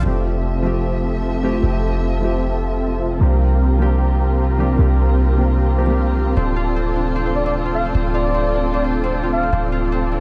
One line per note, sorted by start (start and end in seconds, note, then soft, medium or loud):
0.00 0.61 F3 medium
0.00 2.96 C4 medium
0.00 1.86 D4 medium
0.00 2.09 F4 loud
0.00 1.66 A4 medium
0.00 1.35 C5 medium
0.00 1.61 D5 medium
0.04 1.61 F1 medium
0.04 10.20 C3 medium
0.04 3.18 F3 medium
0.04 0.62 A3 medium
0.04 3.18 A3 medium
0.04 3.19 C4 medium
0.04 0.62 C4 medium
0.04 3.19 F4 medium
0.04 0.63 G4 medium
0.04 3.19 A4 medium
0.04 3.18 E5 medium
0.04 3.19 E5 medium
0.04 0.63 E5 medium
0.04 3.19 A5 medium
0.62 1.40 F3 medium
0.62 1.41 A3 medium
0.62 1.41 C4 medium
0.62 1.42 G4 medium
0.62 1.42 E5 medium
1.42 1.59 F3 medium
1.42 1.61 A3 medium
1.42 1.61 C4 medium
1.42 1.61 E4 medium
1.42 1.61 G4 loud
1.61 3.19 F1 medium
1.61 2.19 F3 medium
1.61 2.20 A3 medium
1.61 2.20 C4 medium
1.61 2.21 E5 medium
1.65 2.21 G4 medium
2.20 3.17 F3 medium
2.20 3.18 A3 medium
2.20 3.19 C4 medium
2.20 3.19 E5 medium
2.24 3.20 G4 medium
3.19 4.77 C2 medium
3.19 3.77 F3 medium
3.19 6.33 G3 medium
3.19 3.77 A#3 medium
3.19 6.33 A#3 medium
3.19 3.78 C4 medium
3.19 6.35 C4 medium
3.19 3.78 D4 medium
3.19 10.20 F4 medium
3.19 6.35 G4 medium
3.19 6.35 A#4 medium
3.19 6.35 F5 medium
3.19 6.35 A#5 medium
3.23 3.79 G4 medium
3.78 4.56 F3 medium
3.78 4.56 A#3 medium
3.78 4.57 C4 medium
3.78 4.57 D4 medium
3.78 4.58 G4 loud
4.58 4.75 F3 medium
4.58 4.76 A#3 medium
4.58 4.77 C4 medium
4.58 4.77 D4 medium
4.58 4.77 G4 loud
4.77 6.35 C2 medium
4.77 5.35 F3 medium
4.77 5.35 A#3 medium
4.77 5.36 C4 medium
4.77 5.36 D4 medium
4.81 5.37 G4 medium
5.37 5.75 F3 medium
5.37 5.75 A#3 medium
5.37 5.76 C4 medium
5.37 5.76 D4 medium
5.37 5.76 G4 medium
5.76 5.85 F3 medium
5.76 5.85 A#3 medium
5.76 5.85 C4 medium
5.76 5.86 D4 medium
5.76 5.86 G4 medium
5.86 6.34 F3 medium
5.86 6.34 A#3 medium
5.86 6.35 C4 medium
5.86 6.35 D4 medium
5.90 6.36 G4 medium
6.37 7.93 D1 medium
6.37 10.20 A3 medium
6.37 9.50 C4 medium
6.37 6.76 C4 medium
6.37 9.49 D4 medium
6.37 9.50 F4 medium
6.37 9.50 A4 medium
6.37 9.50 D5 medium
6.37 9.50 A5 medium
6.56 7.65 F4 medium
6.76 7.15 C4 medium
6.96 8.53 D4 medium
7.16 7.45 C4 loud
7.26 8.84 C5 medium
7.35 7.44 D5 medium
7.46 7.85 C4 loud
7.46 7.55 D5 medium
7.66 8.14 F4 medium
7.75 7.85 F5 medium
7.85 7.94 C4 medium
7.94 9.51 D1 medium
7.94 8.34 C4 loud
8.14 9.23 F4 medium
8.14 8.70 D5 medium
8.34 8.73 C4 medium
8.54 10.11 D4 medium
8.74 9.03 C4 loud
8.74 8.84 D5 medium
8.84 10.20 C5 medium
9.04 9.43 C4 loud
9.04 9.13 C5 medium
9.23 9.72 F4 medium
9.33 9.63 F5 medium
9.43 9.52 C4 medium
9.52 10.20 D1 medium
9.52 9.92 C4 medium
9.52 10.20 C4 medium
9.52 10.20 F4 medium
9.52 10.20 A4 medium
9.52 10.20 D5 medium
9.52 10.20 A5 medium
9.72 10.20 F4 loud
9.92 10.20 C4 loud
10.12 10.20 D4 medium